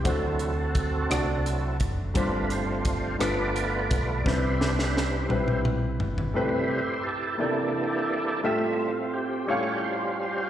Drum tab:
HH |x-x-x-x-x-x-|x-x-x-x-x-x-|------------|------------|
SD |------r-----|------r-----|o-ooo-------|------------|
T2 |------------|------------|------ooo---|------------|
FT |------------|------------|----------oo|------------|
BD |o---o-----o-|o---o-----o-|o-----------|------------|

HH |------------|
SD |------------|
T2 |------------|
FT |------------|
BD |------------|